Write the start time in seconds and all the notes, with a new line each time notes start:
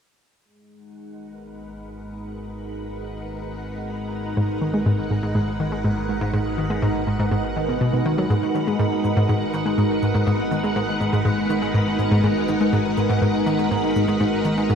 0.43 G#1 G#3
0.60 D#4
0.71 F#5
1.08 A#4 B4
4.37 G#2
4.62 D#3
4.74 G#3
4.86 G#2
5.10 G#2
5.23 G#2
5.35 G#2
5.60 D#3
5.72 G#3
5.84 G#2
6.09 G#2
6.21 G#2
6.33 G#2
6.58 D#3
6.70 G#3
6.82 G#2
7.07 G#2
7.19 G#2
7.31 G#2
7.57 D#3
7.69 B2
7.81 B2
7.93 B2
8.06 D#3
8.18 F#3
8.30 G#1 G#2, low woodblock, shaker
8.43 shaker
8.55 D#3, shaker
8.67 G#3, low woodblock, shaker
8.79 G#2, shaker
8.92 shaker
9.04 G#2, low woodblock, shaker
9.16 G#2, shaker
9.29 G#2, shaker
9.41 low woodblock, shaker
9.53 D#3, shaker
9.65 G#3, shaker
9.78 G#2, low woodblock, shaker
9.90 shaker
10.02 G#2, shaker
10.14 G#2, low woodblock, shaker
10.27 G#2, shaker
10.39 shaker
10.51 D#3, low woodblock, shaker
10.64 G#3, shaker
10.76 G#2, shaker
10.89 low woodblock, shaker
11.01 G#2, shaker
11.13 G#2, shaker
11.25 G#2, low woodblock, shaker
11.38 shaker
11.50 D#3, shaker
11.62 G#3, low woodblock, shaker
11.74 G#2, shaker
11.87 shaker
11.99 G#2, low woodblock, shaker
12.11 G#2, shaker
12.23 G#2, shaker
12.36 low woodblock, shaker
12.48 D#3, shaker
12.60 G#3, shaker
12.72 G#2, low woodblock, shaker
12.85 shaker
12.97 G#2, shaker
13.10 G#2, low woodblock, shaker
13.22 G#2, shaker
13.34 shaker
13.46 D#3, low woodblock, shaker
13.59 G#3, shaker
13.71 G#2, shaker
13.83 low woodblock, shaker
13.96 G#2, shaker
14.08 G#2, shaker
14.20 G#2, low woodblock, shaker
14.32 shaker
14.45 D#3, shaker
14.57 G#3, low woodblock, shaker
14.69 G#2, shaker